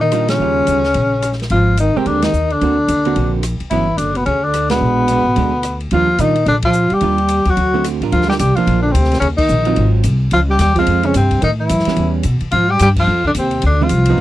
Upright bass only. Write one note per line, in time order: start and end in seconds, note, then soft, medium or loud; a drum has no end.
0.00 0.37 A#2 medium
0.40 0.66 D#2 medium
0.68 0.94 D2 medium
0.95 1.48 A#1 medium
1.50 1.92 G#1 medium
1.95 muted upright bass stroke soft
2.06 2.31 D#2 medium
2.33 2.59 D#2 medium
2.61 2.87 D2 medium
2.88 3.14 D#2 medium
3.16 3.57 A#1 medium
3.60 muted upright bass stroke soft
3.71 3.97 G1 medium
3.98 4.24 F#1 medium
4.27 4.79 D2 medium
4.81 5.22 A#1 medium
5.25 5.35 A1 medium
5.36 5.89 D2 medium
5.92 6.17 D#2 medium
6.19 6.44 A#2 medium
6.46 6.88 A#1 medium
6.91 muted upright bass stroke soft
7.01 7.43 D#2 medium
7.46 7.56 D#2 medium
7.57 7.98 D2 medium
8.01 8.11 A1 medium
8.12 8.39 D2 medium
8.40 8.55 C2 medium
8.57 muted upright bass stroke soft
8.67 8.94 A#1 medium
8.94 9.21 D2 medium
9.21 9.49 D#2 medium
9.49 9.76 A#1 medium
9.77 10.04 G#1 medium
10.04 10.31 C2 medium
10.32 10.58 C#2 medium
10.59 10.86 D#2 medium
10.87 11.14 F2 medium
11.15 11.42 G2 medium
11.42 11.69 A2 medium
11.70 11.85 F#2 medium
11.87 muted upright bass stroke soft
11.97 12.24 E2 medium
12.25 12.41 B2 medium
12.41 muted upright bass stroke soft
12.52 12.79 G#2 medium
12.80 13.07 G2 medium
13.07 13.34 F2 medium
13.35 13.62 D#2 medium
13.63 13.90 D2 medium
13.91 14.17 C2 medium
14.18 14.21 C#2 medium